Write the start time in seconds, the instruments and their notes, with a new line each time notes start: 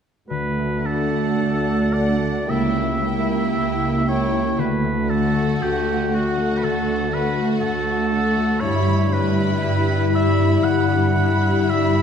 0.28 cello section D2, harp D3, french horn section A3 F#4, oboe B4
0.59 harp A3
0.83 viola section A3, violin section D4 F#5, harp D4, oboe A4
1.12 harp F#4
1.39 cello section D2, harp A4
1.65 harp F#4
1.92 viola section A3, violin section D4 F#5, harp D4, oboe D5
2.21 harp A3
2.46 cello section C#2, harp C#3, french horn section A#3 G4, viola section A#3, violin section E4 G5, oboe E5
2.75 harp C#4
3.00 viola section A#3, harp E4, violin section E4 G5
3.28 harp G4
3.55 cello section C#2, harp A#4
3.81 harp G4
4.05 viola section A#3, harp E4, oboe C#5, violin section G5
4.09 violin section E4
4.33 harp C#4
4.58 cello section D2, harp D3, french horn section A3 F#4, oboe B4
4.84 harp A3
5.08 viola section A3, harp D4, violin section F#4 F#5, oboe A4
5.34 harp F#4
5.60 cello section D2, oboe G4, harp A4
5.86 harp F#4
6.11 viola section A3, harp D4, violin section F#4 F#5, oboe F#4
6.37 harp A3
6.57 oboe B4
6.63 cello section D2, harp D3, oboe A4
6.88 harp D4
7.12 viola section A3, harp A3, violin section F#4 F#5, oboe B4
7.38 harp F#4
7.61 cello section D2, oboe A4, harp A4
7.86 harp F#4
8.10 viola section A3, harp D4, violin section F#4 F#5
8.37 harp A3
8.60 harp G2, cello section G2, french horn section G3 E4, viola section G3, violin section E4 B5, oboe C#5
8.87 harp D3
9.13 viola section G3, harp D4, violin section E4 B5, oboe B4
9.38 harp E4
9.63 cello section G2, harp G4
9.89 harp E4
10.12 viola section G3, harp D4, violin section E4 B5, oboe E5
10.37 harp D3
10.62 harp G2, cello section G2, oboe F#5
10.88 harp D4
11.14 harp D3, viola section G3, violin section E4 B5
11.42 harp E4
11.68 cello section G2, french horn section G3 E4, harp G4, oboe E5
11.95 harp E4